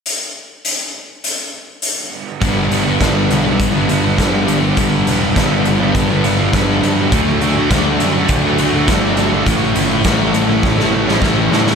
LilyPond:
<<
  \new Staff \with { instrumentName = "Overdriven electric guitar" } { \time 4/4 \key g \lydian \tempo 4 = 102 r1 | <g, d g b d'>8 <d g b d'>16 <g b d'>16 <g, d g b d'>16 <g b d'>8 <g b d'>8 <g b d'>16 <d g b d'>16 <g b d'>16 <g, d g b d'>8 <d g b d'>16 <g b d'>16 | <g, d g b d'>8 <d g b d'>16 <g b d'>16 <g, d g b d'>16 <g b d'>8 <g b d'>8 <g b d'>16 <d g b d'>16 <g b d'>16 <g, d g b d'>8 <d g b d'>16 <g b d'>16 | <d fis a d'>8 <d fis a d'>16 <fis a d'>16 <d fis a d'>16 <fis a d'>8 <fis a d'>8 <fis a d'>16 <d fis a d'>16 <fis a d'>16 <d fis a d'>8 <d fis a d'>16 <fis a d'>16 |
<a, e a cis' e'>8 <e a cis' e'>16 <a cis' e'>16 <a, e a cis' e'>16 <a cis' e'>8 <a cis' e'>8 <a cis' e'>16 <e a cis' e'>16 <a cis' e'>16 <a, e a cis' e'>8 <e a cis' e'>16 <a cis' e'>16 | }
  \new Staff \with { instrumentName = "Distorted electric guitar" } { \clef bass \time 4/4 \key g \lydian r1 | <g, d g>4 <g, d g>8 <g, d g>8. <d g>16 <g, d g>16 <d g>16 <g, d g>8 <g, d g>16 <d g>16 | <g, d g>4 <g, d g>8 <g, d g>8. <d g>16 <g, d g>16 <d g>16 <g, d g>8 <g, d g>16 <d g>16 | <d a d'>4 <d a d'>8 <d a d'>8. <a d'>16 <d a d'>16 <a d'>16 <d a d'>8 <d a d'>16 <a d'>16 |
<a, e a>4 <a, e a>8 <a, e a>8. <e a>16 <a, e a>16 <e a>16 <a, e a>8 <a, e a>16 <e a>16 | }
  \new Staff \with { instrumentName = "Picked electric bass" } { \clef bass \time 4/4 \key g \lydian r1 | g,,8 g,,8 g,,8 b,,8 g,,8 g,,8 g,,4 | g,,8 e,,8 g,,8 g,,8 g,,4 g,,8 g,8 | d,8 d,8 d,8 fis,8 d,8 d,8 g,,4 |
a,,8 g,,8 a,,8 a,,8 a,,4 a,,8 a,8 | }
  \new DrumStaff \with { instrumentName = "Drums" } \drummode { \time 4/4 hh4 hh4 hh4 hh4 | <hh bd>8 hh8 <hh bd sn>8 hh8 <hh bd>8 hh8 <hh bd sn>8 hh8 | <hh bd>8 hh8 <hh bd sn>8 hh8 <hh bd>8 hh8 <hh bd sn>8 hh8 | <hh bd>8 hh8 <hh bd sn>8 hh8 <hh bd>8 hh8 <hh bd sn>8 hh8 |
<hh bd>8 hh8 <hh bd sn>8 hh8 <bd sn>16 sn8 sn16 <bd sn>8 sn16 sn16 | }
>>